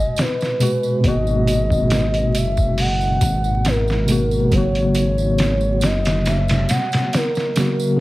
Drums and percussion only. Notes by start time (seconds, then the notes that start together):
0.16 snare, closed hi-hat, tambourine
0.41 snare, tambourine
0.60 closed hi-hat, tambourine
0.83 tambourine
1.04 kick, closed hi-hat, tambourine
1.27 tambourine
1.47 closed hi-hat, tambourine
1.70 kick, tambourine
1.90 snare, closed hi-hat, tambourine
2.14 closed hi-hat, tambourine
2.35 closed hi-hat, tambourine
2.57 kick, tambourine
2.78 open hi-hat, tambourine
3.01 tambourine
3.21 kick, closed hi-hat, tambourine
3.44 tambourine
3.65 snare, closed hi-hat, tambourine
3.88 snare, tambourine
4.08 closed hi-hat, tambourine
4.31 tambourine
4.52 kick, closed hi-hat, tambourine
4.75 closed hi-hat, tambourine
4.95 closed hi-hat, tambourine
5.18 tambourine
5.38 snare, closed hi-hat, tambourine
5.61 tambourine
5.81 snare, closed hi-hat, tambourine
6.05 snare, closed hi-hat, tambourine
6.25 snare, closed hi-hat, tambourine
6.48 snare, closed hi-hat, tambourine
6.69 snare, closed hi-hat, tambourine
6.92 snare, closed hi-hat, tambourine
7.13 snare, closed hi-hat, tambourine
7.35 snare, tambourine
7.56 snare, closed hi-hat, tambourine
7.80 tambourine